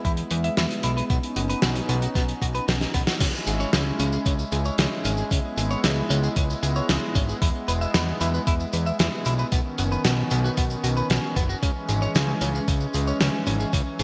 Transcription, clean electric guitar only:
0.05 0.11 E4 medium
0.31 0.35 B4 medium
0.44 0.54 E5 medium
0.57 0.64 E4 medium
0.84 0.90 E4 loud
0.97 1.03 B4 medium
1.10 1.17 B3 medium
1.36 1.40 F#4 medium
1.49 1.59 B4 medium
1.63 1.69 B3 medium
1.89 1.96 B3 loud
2.02 2.09 F#4 medium
2.15 2.22 B3 medium
2.42 2.46 F#4 medium
2.55 2.65 B4 medium
2.68 2.74 B3 medium
2.94 3.01 B3 loud
3.07 3.14 F#4 medium
3.21 3.27 C#4 medium
3.47 3.51 G#4 medium
3.60 3.70 C#5 medium
3.73 3.80 C#4 medium
4.00 4.06 C#4 loud
4.13 4.19 G#4 medium
4.26 4.33 C#4 medium
4.52 4.56 G#4 medium
4.66 4.75 C#5 medium
4.79 4.85 C#4 medium
5.05 5.12 C#4 loud
5.18 5.25 G#4 medium
5.31 5.38 C#4 medium
5.58 5.61 G#4 medium
5.71 5.81 C#5 medium
5.84 5.90 C#4 medium
6.10 6.17 C#4 loud
6.23 6.30 G#4 medium
6.36 6.43 C#4 medium
6.63 6.67 G#4 medium
6.76 6.86 C#5 medium
6.89 6.96 C#4 medium
7.15 7.22 C#4 loud
7.29 7.35 G#4 medium
7.42 7.48 E4 medium
7.68 7.72 B4 medium
7.81 7.91 E5 medium
7.94 8.01 E4 medium
8.21 8.27 E4 loud
8.34 8.40 B4 medium
8.47 8.54 E4 medium
8.73 8.77 B4 medium
8.86 8.96 E5 medium
9.00 9.06 E4 medium
9.26 9.32 E4 loud
9.39 9.46 B4 medium
9.52 9.59 B3 medium
9.79 9.83 F#4 medium
9.92 10.02 B4 medium
10.05 10.11 B3 medium
10.31 10.38 B3 loud
10.44 10.51 F#4 medium
10.57 10.64 B3 medium
10.84 10.88 F#4 medium
10.97 11.07 B4 medium
11.10 11.17 B3 medium
11.36 11.43 B3 loud
11.49 11.56 F#4 medium
11.63 11.69 C#4 medium
11.89 11.93 G#4 medium
12.02 12.12 C#5 medium
12.15 12.22 C#4 medium
12.42 12.48 C#4 loud
12.55 12.61 G#4 medium
12.68 12.75 C#4 medium
12.94 12.98 G#4 medium
13.08 13.17 C#5 medium
13.21 13.27 C#4 medium
13.47 13.53 C#4 loud
13.60 13.67 G#4 medium
13.73 13.80 C#4 medium
14.00 14.03 G#4 medium

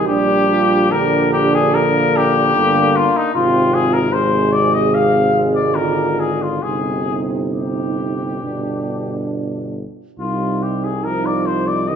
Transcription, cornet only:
0.08 0.93 G4 loud
0.92 1.32 A#4 loud
1.33 1.56 G4 medium
1.55 1.76 G#4 medium
1.74 2.18 A#4 loud
2.17 2.98 G4 loud
2.96 3.18 F4 medium
3.16 3.34 D#4 medium
3.35 3.76 F4 medium
3.74 3.95 G#4 medium
3.93 4.14 A#4 medium
4.13 4.54 C5 medium
4.53 4.75 D5 medium
4.74 4.96 D#5 medium
4.94 5.38 F5 medium
5.55 5.77 D5 medium
5.75 6.21 A#4 medium
6.20 6.44 G#4 medium
6.42 6.64 F4 medium
6.63 7.22 G#4 medium
7.52 9.26 G4 soft
10.19 10.64 F4 medium
10.63 10.86 G4 medium
10.84 11.06 G#4 medium
11.04 11.27 A#4 medium
11.26 11.47 D5 medium
11.46 11.69 C5 medium
11.67 11.89 D5 medium
11.88 11.96 D#5 medium

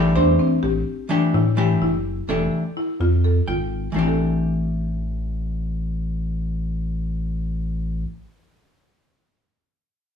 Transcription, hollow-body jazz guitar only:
0.00 0.57 E3 medium
0.00 0.58 A3 medium
0.00 0.58 D4 medium
0.00 0.58 G4 medium
0.15 0.59 C5 medium
1.09 1.43 E3 medium
1.09 1.43 A3 medium
1.09 1.43 D4 medium
1.09 1.44 G4 medium
1.57 1.90 E3 medium
1.57 1.91 A3 medium
1.57 1.91 D4 medium
1.57 1.91 G4 medium
2.28 2.62 E3 medium
2.28 2.62 A3 medium
2.28 2.62 D4 medium
2.28 2.63 G4 medium
3.48 3.92 G5 medium
3.92 8.14 E3 medium
3.92 8.16 A3 medium
3.96 8.18 D4 medium
3.96 8.20 G4 medium

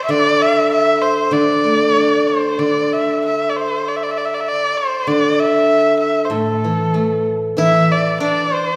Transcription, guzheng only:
0.08 1.30 D3 medium
1.31 2.58 D3 medium
1.64 2.92 A3 soft
1.96 3.24 D4 soft
2.59 4.47 D3 medium
5.07 6.30 D3 medium
6.30 8.20 A2 medium
6.64 7.55 E3 soft
6.94 8.21 A3 soft
7.57 8.76 E3 medium

